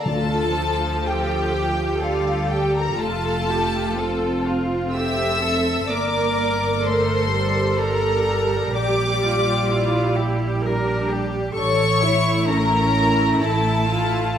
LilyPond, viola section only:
\new Staff \with { instrumentName = "Viola section" } { \time 3/4 \key d \minor \tempo 4 = 63 << { f'4 a'8 g'4. | f'2 a'4 | bes'2 bes'4 | g'8 f'8 e'4 d'4 |
r8 e'4 e'4 e'8 | } \\ { a8 f4. g4 | a8 a8 c'2 | bes4 a8 g4.~ | g2 g4 |
r8 a4 a4 a8 | } >> }